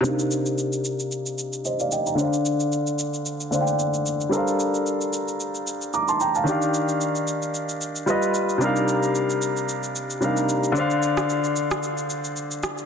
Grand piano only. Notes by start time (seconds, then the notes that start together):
0.01 C3 C4 D4
0.05 D#4 F5
1.65 C5 D#5
1.80 D5 F5
1.92 D#5 G5
2.07 G5 A#5
2.15 D3 D4
2.20 C5 F5
3.51 D3 D4 C5 F5
3.61 G5
4.29 G3 D4 A4
4.34 A#4 C5 F5
5.94 A#5 D6
6.08 A5 C6
6.21 G5 A#5
6.35 F5 A5
6.44 D#3 D4
6.49 G4 F5
8.06 G3 F4 B4 D#5
8.58 C3 G3 D4
8.62 D#4 A#4 F5
10.20 C3 G3 D4 D#4 A#4 F5
10.72 D3 D4
10.77 C5 F5